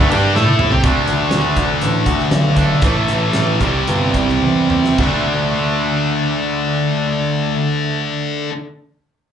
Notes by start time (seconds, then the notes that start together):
Already playing: D4 A4 E5
0.00 D2 D3 A3
0.10 G2 G3 D4 G4, ride
0.35 A2 A3 E4 A4, snare
0.47 high tom
0.59 mid tom
0.71 C3 C4 G4, floor tom
0.83 D2 D3 A3 D4, kick, closed hi-hat
1.08 D2, closed hi-hat
1.31 D2, snare, closed hi-hat
1.56 D2, kick, closed hi-hat
1.81 A1, closed hi-hat
2.06 D2, kick, closed hi-hat
2.19 snare
2.31 B1, snare, closed hi-hat
2.56 A3 D4, kick, closed hi-hat
2.60 D3
2.82 A1 A2 E3 A3, kick, closed hi-hat
3.08 A1, closed hi-hat
3.33 A1, snare, closed hi-hat
3.60 C2 C3 G3, kick, closed hi-hat
3.66 C4
3.87 G1, closed hi-hat
4.14 C2, kick, closed hi-hat
4.28 snare
4.42 E2, high tom
4.70 mid tom
4.84 snare
4.98 D2 D3 A3 D4, kick, crash